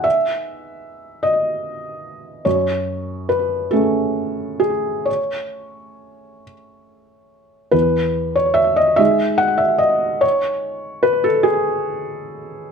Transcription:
\new Staff \with { instrumentName = "Felt piano" } { \time 6/8 \key e \major \tempo 4. = 48 << { e''4. dis''4. | cis''4 b'8 a'4 gis'8 | cis''4. r4. | b'8. cis''16 e''16 dis''16 e''8 fis''16 e''16 dis''8 |
cis''4 b'16 a'16 gis'4. | } \\ { <b dis' gis'>2. | fis,4. <a cis' gis'>4.~ | <a cis' gis'>2. | e,4. <gis dis' gis'>4.~ |
<gis dis' gis'>2. | } >> }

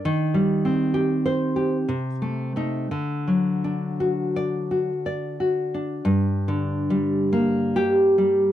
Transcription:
\new Staff \with { instrumentName = "Nylon-string guitar" } { \time 3/4 \key g \minor \tempo 4 = 64 << { r4 \tuplet 3/2 { r8 c''4 r4 ees'8 } | r4 \tuplet 3/2 { r8 d''4 } r4 | r2 g'4 | } \\ { \tuplet 3/2 { ees8 g8 c'8 g'4 g'8 c8 a8 a8 } | \tuplet 3/2 { d8 fis8 d'8 fis'4 fis'8 d''8 fis'8 d'8 } | g,8 d8 g8 bes4 g8 | } >> }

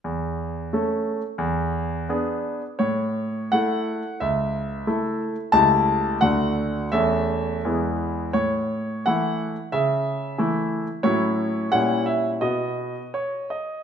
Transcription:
<<
  \new Staff \with { instrumentName = "Grand piano" } { \time 2/4 \key a \major \tempo 4 = 87 r2 | r2 | cis''4 fis''4 | e''4. r8 |
a''4 fis''4 | e''4 r4 | cis''4 fis''4 | e''4. r8 |
\key b \mixolydian cis''4 fis''8 e''8 | dis''4 cis''8 dis''8 | }
  \new Staff \with { instrumentName = "Grand piano" } { \time 2/4 \key a \major e,4 <a cis' a'>4 | e,4 <b d' gis'>4 | a,4 <a e' a'>4 | cis,4 <a e' a'>4 |
<cis, a e' g'>4 <d, a d' fis'>4 | <e, a cis' a'>4 <e, gis b e'>4 | a,4 <e a e'>4 | cis4 <e a e'>4 |
\key b \mixolydian <a, fis cis' e'>4 <ais, g cis' e'>4 | <b, b fis'>4 r4 | }
>>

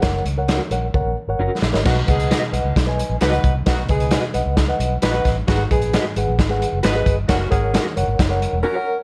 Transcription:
<<
  \new Staff \with { instrumentName = "Reed electric piano" } { \time 4/4 \key b \major \tempo 4 = 132 <ais' cis'' fis''>8 r16 <ais' cis'' fis''>8 r16 <ais' cis'' fis''>16 r16 <ais' cis'' fis''>8 r16 <ais' cis'' fis''>8 r8 <ais' cis'' dis''>16 | <b' dis'' fis''>16 r16 <b' dis'' fis''>8 r8 <b' dis'' fis''>8 r16 <b' dis'' gis''>8 r8 <b' dis'' fis''>8 r16 | <b' dis'' fis''>16 r16 <b' dis'' gis''>8 r8 <b' dis'' fis''>8 r16 <b' dis'' fis''>8 r8 <b' dis'' fis''>8 r16 | <gis' b' fis''>16 r16 <gis' b' gis''>8 r8 <gis' b' fis''>8 r16 <gis' b' fis''>8 r8 <gis' b' dis''>8 r16 |
<ais' cis'' fis''>16 r16 <ais' cis'' fis''>8 r8 <ais' cis'' fis''>8 r16 <ais' cis'' fis''>8 r8 <ais' cis'' fis''>8 r16 | }
  \new Staff \with { instrumentName = "Reed electric piano" } { \clef bass \time 4/4 \key b \major r1 | b,4. r2 r8 | b,4. r2 r8 | gis,4. r2 r8 |
r1 | }
  \new Staff \with { instrumentName = "Clean electric guitar" } { \time 4/4 \key b \major r4 <cis' fis' ais'>8 r4. <cis' fis' ais'>8 r8 | r4 <fis' b' dis''>8 r4. <fis' b' dis''>8 r8 | r4 <fis' b' dis''>8 r4. <fis' b' dis''>8 r8 | r4 <fis' b' dis''>8 r4. <fis' b' dis''>8 r8 |
r4 <cis' fis' ais'>8 r4. <cis' fis' ais'>8 r8 | }
  \new Staff \with { instrumentName = "Saxophone section" } { \time 4/4 \key b \major r1 | <b dis' fis'>8 <b dis' gis'>4 r4. <dis' fis' b'>8. r16 | <b dis' fis'>8 <b dis' gis'>4 r4. <dis' fis' b'>8. r16 | <b dis' fis'>8 <b dis' gis'>4 r4. <fis' gis' b'>8. r16 |
<ais cis' fis'>8 <ais cis' gis'>4 r4. <cis' fis' ais'>8. r16 | }
  \new Staff \with { instrumentName = "Fingered electric bass" } { \clef bass \time 4/4 \key b \major fis,,8 cis,4 ais,,8 cis,16 ais,,16 r16 gis,,16 fis,,16 r16 ais,,16 gis,,16 | b,,8 cis,8. r16 b,,16 cis,16 b,,8. ais,,16 cis,8 c,8 | b,,8 cis,8. r16 b,,16 cis,8. b,,8 ais,,8 a,,8 | gis,,8 ais,,8. r16 gis,,16 ais,,16 gis,,8. fis,,16 gis,,8 g,,8 |
fis,,8 gis,,8. r16 fis,,16 gis,,16 fis,,8. e,,16 r4 | }
  \new DrumStaff \with { instrumentName = "Drums" } \drummode { \time 4/4 <hh bd sn>8 hh8 <hh sn>8 hh8 bd4 r8 sn16 sn16 | <cymc bd sn>8 <hh bd>16 hh16 <hh sn>8 hh8 <hh bd sn>8 hh8 <hh sn>16 hh16 <hh bd>8 | <hh bd sn>8 <hh bd>16 hh16 <hh sn>8 hh8 <hh bd sn>8 hh8 <hh sn>8 <hh bd sn>8 | <hh bd sn>8 <hh bd>16 hh16 <hh sn>8 hh8 <hh bd sn>8 hh8 <hh sn>8 <hh bd>8 |
<hh bd sn>8 <hh bd>8 <hh sn>8 hh8 <hh bd sn>8 hh8 r4 | }
>>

